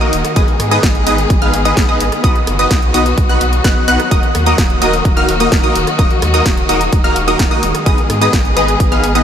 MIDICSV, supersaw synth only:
0, 0, Header, 1, 2, 480
1, 0, Start_track
1, 0, Key_signature, -6, "minor"
1, 0, Tempo, 468750
1, 372, Time_signature, 4, 2, 24, 8
1, 9455, End_track
2, 0, Start_track
2, 0, Title_t, "Supersaw synth"
2, 0, Program_c, 0, 81
2, 11, Note_on_c, 0, 66, 74
2, 11, Note_on_c, 0, 70, 70
2, 11, Note_on_c, 0, 75, 88
2, 12, Note_on_c, 0, 58, 78
2, 12, Note_on_c, 0, 63, 76
2, 135, Note_off_c, 0, 58, 0
2, 135, Note_off_c, 0, 63, 0
2, 135, Note_off_c, 0, 66, 0
2, 135, Note_off_c, 0, 70, 0
2, 135, Note_off_c, 0, 75, 0
2, 372, Note_on_c, 0, 59, 104
2, 372, Note_on_c, 0, 63, 102
2, 372, Note_on_c, 0, 68, 93
2, 372, Note_on_c, 0, 71, 97
2, 372, Note_on_c, 0, 75, 110
2, 495, Note_off_c, 0, 68, 0
2, 495, Note_off_c, 0, 71, 0
2, 496, Note_off_c, 0, 59, 0
2, 496, Note_off_c, 0, 63, 0
2, 496, Note_off_c, 0, 75, 0
2, 731, Note_on_c, 0, 59, 94
2, 731, Note_on_c, 0, 63, 90
2, 731, Note_on_c, 0, 68, 89
2, 731, Note_on_c, 0, 71, 88
2, 731, Note_on_c, 0, 75, 113
2, 855, Note_off_c, 0, 59, 0
2, 855, Note_off_c, 0, 63, 0
2, 855, Note_off_c, 0, 68, 0
2, 855, Note_off_c, 0, 71, 0
2, 855, Note_off_c, 0, 75, 0
2, 1092, Note_on_c, 0, 59, 95
2, 1092, Note_on_c, 0, 63, 84
2, 1092, Note_on_c, 0, 68, 84
2, 1092, Note_on_c, 0, 71, 84
2, 1092, Note_on_c, 0, 75, 100
2, 1215, Note_off_c, 0, 59, 0
2, 1215, Note_off_c, 0, 63, 0
2, 1215, Note_off_c, 0, 68, 0
2, 1215, Note_off_c, 0, 71, 0
2, 1215, Note_off_c, 0, 75, 0
2, 1452, Note_on_c, 0, 71, 78
2, 1452, Note_on_c, 0, 77, 97
2, 1453, Note_on_c, 0, 59, 85
2, 1453, Note_on_c, 0, 63, 84
2, 1453, Note_on_c, 0, 68, 85
2, 1576, Note_off_c, 0, 59, 0
2, 1576, Note_off_c, 0, 63, 0
2, 1576, Note_off_c, 0, 68, 0
2, 1576, Note_off_c, 0, 71, 0
2, 1576, Note_off_c, 0, 77, 0
2, 1693, Note_on_c, 0, 59, 75
2, 1693, Note_on_c, 0, 63, 67
2, 1693, Note_on_c, 0, 68, 71
2, 1693, Note_on_c, 0, 71, 67
2, 1693, Note_on_c, 0, 75, 79
2, 1890, Note_off_c, 0, 59, 0
2, 1890, Note_off_c, 0, 63, 0
2, 1890, Note_off_c, 0, 68, 0
2, 1890, Note_off_c, 0, 71, 0
2, 1890, Note_off_c, 0, 75, 0
2, 1932, Note_on_c, 0, 59, 77
2, 1932, Note_on_c, 0, 63, 70
2, 1932, Note_on_c, 0, 68, 72
2, 1932, Note_on_c, 0, 71, 71
2, 1932, Note_on_c, 0, 75, 90
2, 2055, Note_off_c, 0, 59, 0
2, 2055, Note_off_c, 0, 63, 0
2, 2055, Note_off_c, 0, 68, 0
2, 2055, Note_off_c, 0, 71, 0
2, 2055, Note_off_c, 0, 75, 0
2, 2292, Note_on_c, 0, 59, 107
2, 2292, Note_on_c, 0, 63, 93
2, 2292, Note_on_c, 0, 66, 92
2, 2292, Note_on_c, 0, 71, 102
2, 2292, Note_on_c, 0, 75, 113
2, 2416, Note_off_c, 0, 59, 0
2, 2416, Note_off_c, 0, 63, 0
2, 2416, Note_off_c, 0, 66, 0
2, 2416, Note_off_c, 0, 71, 0
2, 2416, Note_off_c, 0, 75, 0
2, 2653, Note_on_c, 0, 59, 92
2, 2653, Note_on_c, 0, 63, 85
2, 2653, Note_on_c, 0, 66, 86
2, 2653, Note_on_c, 0, 71, 90
2, 2653, Note_on_c, 0, 75, 110
2, 2776, Note_off_c, 0, 59, 0
2, 2776, Note_off_c, 0, 63, 0
2, 2776, Note_off_c, 0, 66, 0
2, 2776, Note_off_c, 0, 71, 0
2, 2776, Note_off_c, 0, 75, 0
2, 3013, Note_on_c, 0, 59, 91
2, 3013, Note_on_c, 0, 63, 87
2, 3013, Note_on_c, 0, 66, 80
2, 3013, Note_on_c, 0, 71, 81
2, 3013, Note_on_c, 0, 75, 102
2, 3136, Note_off_c, 0, 59, 0
2, 3136, Note_off_c, 0, 63, 0
2, 3136, Note_off_c, 0, 66, 0
2, 3136, Note_off_c, 0, 71, 0
2, 3136, Note_off_c, 0, 75, 0
2, 3373, Note_on_c, 0, 59, 87
2, 3373, Note_on_c, 0, 63, 82
2, 3373, Note_on_c, 0, 66, 84
2, 3373, Note_on_c, 0, 71, 81
2, 3373, Note_on_c, 0, 78, 98
2, 3496, Note_off_c, 0, 59, 0
2, 3496, Note_off_c, 0, 63, 0
2, 3496, Note_off_c, 0, 66, 0
2, 3496, Note_off_c, 0, 71, 0
2, 3496, Note_off_c, 0, 78, 0
2, 3732, Note_on_c, 0, 66, 84
2, 3732, Note_on_c, 0, 71, 86
2, 3732, Note_on_c, 0, 78, 105
2, 3733, Note_on_c, 0, 59, 92
2, 3733, Note_on_c, 0, 63, 83
2, 3943, Note_off_c, 0, 63, 0
2, 3943, Note_off_c, 0, 66, 0
2, 3943, Note_off_c, 0, 71, 0
2, 3943, Note_off_c, 0, 78, 0
2, 3944, Note_off_c, 0, 59, 0
2, 3972, Note_on_c, 0, 63, 89
2, 3972, Note_on_c, 0, 66, 84
2, 3972, Note_on_c, 0, 71, 94
2, 3972, Note_on_c, 0, 78, 109
2, 3973, Note_on_c, 0, 59, 94
2, 4096, Note_off_c, 0, 59, 0
2, 4096, Note_off_c, 0, 63, 0
2, 4096, Note_off_c, 0, 66, 0
2, 4096, Note_off_c, 0, 71, 0
2, 4096, Note_off_c, 0, 78, 0
2, 4213, Note_on_c, 0, 63, 94
2, 4213, Note_on_c, 0, 70, 96
2, 4213, Note_on_c, 0, 75, 109
2, 4214, Note_on_c, 0, 58, 106
2, 4214, Note_on_c, 0, 66, 97
2, 4336, Note_off_c, 0, 58, 0
2, 4336, Note_off_c, 0, 63, 0
2, 4336, Note_off_c, 0, 66, 0
2, 4336, Note_off_c, 0, 70, 0
2, 4336, Note_off_c, 0, 75, 0
2, 4574, Note_on_c, 0, 58, 101
2, 4574, Note_on_c, 0, 63, 89
2, 4574, Note_on_c, 0, 66, 91
2, 4574, Note_on_c, 0, 70, 86
2, 4574, Note_on_c, 0, 75, 113
2, 4696, Note_off_c, 0, 58, 0
2, 4696, Note_off_c, 0, 63, 0
2, 4696, Note_off_c, 0, 66, 0
2, 4696, Note_off_c, 0, 75, 0
2, 4697, Note_off_c, 0, 70, 0
2, 4933, Note_on_c, 0, 58, 90
2, 4933, Note_on_c, 0, 63, 88
2, 4933, Note_on_c, 0, 66, 86
2, 4933, Note_on_c, 0, 70, 86
2, 4933, Note_on_c, 0, 75, 97
2, 5056, Note_off_c, 0, 58, 0
2, 5056, Note_off_c, 0, 63, 0
2, 5056, Note_off_c, 0, 66, 0
2, 5056, Note_off_c, 0, 70, 0
2, 5056, Note_off_c, 0, 75, 0
2, 5293, Note_on_c, 0, 63, 83
2, 5294, Note_on_c, 0, 58, 92
2, 5294, Note_on_c, 0, 66, 78
2, 5294, Note_on_c, 0, 70, 83
2, 5294, Note_on_c, 0, 77, 99
2, 5416, Note_off_c, 0, 63, 0
2, 5416, Note_off_c, 0, 66, 0
2, 5416, Note_off_c, 0, 70, 0
2, 5416, Note_off_c, 0, 77, 0
2, 5417, Note_off_c, 0, 58, 0
2, 5533, Note_on_c, 0, 58, 70
2, 5533, Note_on_c, 0, 63, 71
2, 5533, Note_on_c, 0, 66, 69
2, 5533, Note_on_c, 0, 70, 68
2, 5533, Note_on_c, 0, 75, 82
2, 5730, Note_off_c, 0, 58, 0
2, 5730, Note_off_c, 0, 63, 0
2, 5730, Note_off_c, 0, 66, 0
2, 5730, Note_off_c, 0, 70, 0
2, 5730, Note_off_c, 0, 75, 0
2, 5773, Note_on_c, 0, 58, 83
2, 5773, Note_on_c, 0, 63, 69
2, 5773, Note_on_c, 0, 66, 72
2, 5773, Note_on_c, 0, 70, 71
2, 5773, Note_on_c, 0, 75, 85
2, 5896, Note_off_c, 0, 58, 0
2, 5896, Note_off_c, 0, 63, 0
2, 5896, Note_off_c, 0, 66, 0
2, 5896, Note_off_c, 0, 70, 0
2, 5896, Note_off_c, 0, 75, 0
2, 6132, Note_on_c, 0, 58, 107
2, 6132, Note_on_c, 0, 63, 98
2, 6132, Note_on_c, 0, 66, 94
2, 6132, Note_on_c, 0, 70, 93
2, 6133, Note_on_c, 0, 75, 119
2, 6256, Note_off_c, 0, 58, 0
2, 6256, Note_off_c, 0, 63, 0
2, 6256, Note_off_c, 0, 66, 0
2, 6256, Note_off_c, 0, 70, 0
2, 6256, Note_off_c, 0, 75, 0
2, 6493, Note_on_c, 0, 58, 91
2, 6493, Note_on_c, 0, 63, 90
2, 6493, Note_on_c, 0, 66, 88
2, 6493, Note_on_c, 0, 70, 94
2, 6493, Note_on_c, 0, 75, 102
2, 6616, Note_off_c, 0, 58, 0
2, 6616, Note_off_c, 0, 63, 0
2, 6616, Note_off_c, 0, 66, 0
2, 6616, Note_off_c, 0, 70, 0
2, 6616, Note_off_c, 0, 75, 0
2, 6852, Note_on_c, 0, 58, 92
2, 6852, Note_on_c, 0, 63, 84
2, 6852, Note_on_c, 0, 66, 85
2, 6852, Note_on_c, 0, 70, 84
2, 6852, Note_on_c, 0, 75, 100
2, 6975, Note_off_c, 0, 63, 0
2, 6975, Note_off_c, 0, 66, 0
2, 6975, Note_off_c, 0, 70, 0
2, 6975, Note_off_c, 0, 75, 0
2, 6976, Note_off_c, 0, 58, 0
2, 7211, Note_on_c, 0, 58, 87
2, 7211, Note_on_c, 0, 63, 84
2, 7211, Note_on_c, 0, 66, 83
2, 7211, Note_on_c, 0, 70, 82
2, 7211, Note_on_c, 0, 77, 94
2, 7335, Note_off_c, 0, 58, 0
2, 7335, Note_off_c, 0, 63, 0
2, 7335, Note_off_c, 0, 66, 0
2, 7335, Note_off_c, 0, 70, 0
2, 7335, Note_off_c, 0, 77, 0
2, 7450, Note_on_c, 0, 66, 69
2, 7451, Note_on_c, 0, 58, 76
2, 7451, Note_on_c, 0, 63, 67
2, 7451, Note_on_c, 0, 70, 70
2, 7451, Note_on_c, 0, 75, 85
2, 7649, Note_off_c, 0, 58, 0
2, 7649, Note_off_c, 0, 63, 0
2, 7649, Note_off_c, 0, 66, 0
2, 7649, Note_off_c, 0, 70, 0
2, 7649, Note_off_c, 0, 75, 0
2, 7690, Note_on_c, 0, 58, 76
2, 7690, Note_on_c, 0, 63, 71
2, 7690, Note_on_c, 0, 70, 70
2, 7691, Note_on_c, 0, 66, 73
2, 7691, Note_on_c, 0, 75, 86
2, 7815, Note_off_c, 0, 58, 0
2, 7815, Note_off_c, 0, 63, 0
2, 7815, Note_off_c, 0, 66, 0
2, 7815, Note_off_c, 0, 70, 0
2, 7815, Note_off_c, 0, 75, 0
2, 8050, Note_on_c, 0, 71, 97
2, 8051, Note_on_c, 0, 59, 107
2, 8051, Note_on_c, 0, 63, 97
2, 8051, Note_on_c, 0, 68, 95
2, 8051, Note_on_c, 0, 75, 114
2, 8175, Note_off_c, 0, 59, 0
2, 8175, Note_off_c, 0, 63, 0
2, 8175, Note_off_c, 0, 68, 0
2, 8175, Note_off_c, 0, 71, 0
2, 8175, Note_off_c, 0, 75, 0
2, 8411, Note_on_c, 0, 59, 98
2, 8411, Note_on_c, 0, 75, 101
2, 8412, Note_on_c, 0, 63, 88
2, 8412, Note_on_c, 0, 68, 90
2, 8412, Note_on_c, 0, 71, 90
2, 8535, Note_off_c, 0, 59, 0
2, 8535, Note_off_c, 0, 63, 0
2, 8535, Note_off_c, 0, 68, 0
2, 8535, Note_off_c, 0, 71, 0
2, 8535, Note_off_c, 0, 75, 0
2, 8771, Note_on_c, 0, 63, 84
2, 8771, Note_on_c, 0, 71, 86
2, 8772, Note_on_c, 0, 59, 88
2, 8772, Note_on_c, 0, 68, 83
2, 8772, Note_on_c, 0, 75, 99
2, 8895, Note_off_c, 0, 59, 0
2, 8895, Note_off_c, 0, 63, 0
2, 8895, Note_off_c, 0, 71, 0
2, 8895, Note_off_c, 0, 75, 0
2, 8896, Note_off_c, 0, 68, 0
2, 9131, Note_on_c, 0, 59, 88
2, 9131, Note_on_c, 0, 68, 85
2, 9132, Note_on_c, 0, 63, 78
2, 9132, Note_on_c, 0, 71, 81
2, 9132, Note_on_c, 0, 77, 98
2, 9255, Note_off_c, 0, 59, 0
2, 9255, Note_off_c, 0, 63, 0
2, 9255, Note_off_c, 0, 68, 0
2, 9255, Note_off_c, 0, 71, 0
2, 9255, Note_off_c, 0, 77, 0
2, 9372, Note_on_c, 0, 59, 75
2, 9372, Note_on_c, 0, 63, 72
2, 9372, Note_on_c, 0, 68, 70
2, 9372, Note_on_c, 0, 71, 66
2, 9372, Note_on_c, 0, 75, 85
2, 9455, Note_off_c, 0, 59, 0
2, 9455, Note_off_c, 0, 63, 0
2, 9455, Note_off_c, 0, 68, 0
2, 9455, Note_off_c, 0, 71, 0
2, 9455, Note_off_c, 0, 75, 0
2, 9455, End_track
0, 0, End_of_file